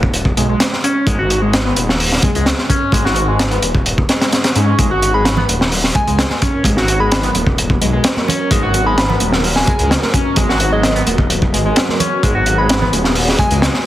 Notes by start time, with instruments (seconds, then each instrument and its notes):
Already playing: detuned saw bass D#1
0.03 kick
0.14 closed hi-hat
0.25 kick
0.37 detuned saw bass B1, analog synth lead G#3, closed hi-hat
0.49 analog synth lead G#3
0.60 snare, closed hi-hat
0.73 snare
0.84 analog synth lead C#4, closed hi-hat
1.07 detuned saw bass G#1, analog synth lead G#3, kick, closed hi-hat
1.19 analog synth lead F#4
1.30 closed hi-hat
1.42 analog synth lead G#3
1.53 snare, closed hi-hat
1.65 analog synth lead B3
1.76 detuned saw bass D#1, closed hi-hat
1.89 snare
2.00 open hi-hat
2.12 snare
2.22 analog synth lead G#3, kick, closed hi-hat
2.35 detuned saw bass C#2, analog synth lead G#3, closed hi-hat
2.46 snare, closed hi-hat
2.58 snare
2.70 analog synth lead C#4, kick, closed hi-hat
2.92 detuned saw bass G#1, analog synth lead G#3, kick, closed hi-hat
3.05 analog synth lead F#4, snare
3.16 closed hi-hat
3.28 analog synth lead G#3
3.39 snare, closed hi-hat
3.51 analog synth lead B3, closed hi-hat
3.62 detuned saw bass D#1, closed hi-hat
3.75 kick
3.86 closed hi-hat
3.98 kick
4.09 analog synth lead G#3, snare, closed hi-hat
4.21 analog synth lead G#3, snare, closed hi-hat
4.32 snare, closed hi-hat
4.44 snare, closed hi-hat
4.55 detuned saw bass G#2, analog synth lead C#4, closed hi-hat
4.79 detuned saw bass G#1, analog synth pad F#3 B3 A#4, analog synth lead G#3, kick, closed hi-hat
4.91 analog synth lead F#4
5.02 closed hi-hat
5.14 analog synth lead G#3, synth bell B5
5.25 synth bell B5, snare, closed hi-hat
5.37 analog synth lead B3, low conga
5.49 detuned saw bass D#1, closed hi-hat, high conga
5.61 snare
5.72 open hi-hat
5.84 snare
5.95 analog synth lead G#3, synth bell G#5, kick, closed hi-hat
6.07 detuned saw bass C#2, analog synth lead G#3, closed hi-hat
6.19 snare, closed hi-hat
6.30 snare, high conga
6.42 analog synth lead C#4, kick, closed hi-hat
6.64 detuned saw bass G#1, analog synth lead G#3, kick, closed hi-hat
6.77 analog synth lead F#4, snare
6.88 closed hi-hat
7.00 analog synth lead G#3, synth bell B5
7.12 synth bell B5, snare, closed hi-hat
7.23 analog synth lead B3, closed hi-hat
7.35 detuned saw bass D#1, closed hi-hat, high conga
7.47 kick
7.58 closed hi-hat
7.70 kick
7.81 detuned saw bass B1, analog synth lead G#3, closed hi-hat
7.93 analog synth lead G#3
8.04 snare, closed hi-hat
8.17 snare, high conga
8.28 analog synth lead C#4, closed hi-hat, low conga
8.51 detuned saw bass G#1, analog synth lead G#3, kick, closed hi-hat
8.63 analog synth lead F#4
8.74 closed hi-hat
8.86 analog synth lead G#3, synth bell B5
8.98 synth bell B5, snare, closed hi-hat
9.09 analog synth lead B3, low conga
9.20 detuned saw bass D#1, closed hi-hat, high conga
9.32 snare
9.44 open hi-hat
9.56 synth bell G#5, snare
9.67 analog synth lead G#3, synth bell G#5, kick, closed hi-hat
9.79 detuned saw bass C#2, analog synth lead G#3, closed hi-hat
9.91 snare, closed hi-hat
10.02 snare, high conga
10.14 analog synth lead C#4, kick, closed hi-hat
10.36 detuned saw bass G#1, analog synth lead G#3, kick, closed hi-hat
10.49 analog synth lead F#4, snare
10.60 closed hi-hat
10.72 analog synth lead G#3, synth bell D#5
10.83 synth bell D#5, snare, closed hi-hat
10.96 analog synth lead B3, closed hi-hat
11.07 detuned saw bass D#1, closed hi-hat, high conga
11.18 kick
11.30 closed hi-hat
11.42 kick
11.53 detuned saw bass G#1, analog synth lead G#3, closed hi-hat
11.65 analog synth lead G#3
11.76 snare, closed hi-hat
11.89 snare, high conga
12.00 analog synth lead C#4, closed hi-hat, low conga
12.23 detuned saw bass G#1, analog synth lead G#3, analog synth pad G#4, kick, closed hi-hat
12.35 analog synth lead F#4
12.46 closed hi-hat
12.58 analog synth lead G#3, synth bell B5
12.69 synth bell B5, snare, closed hi-hat
12.81 analog synth lead B3, low conga
12.93 detuned saw bass D#1, closed hi-hat, high conga
13.04 snare
13.15 open hi-hat
13.29 snare
13.39 analog synth lead G#3, synth bell G#5, kick, closed hi-hat
13.51 detuned saw bass C#2, analog synth lead G#3, closed hi-hat
13.62 snare, closed hi-hat
13.74 snare, high conga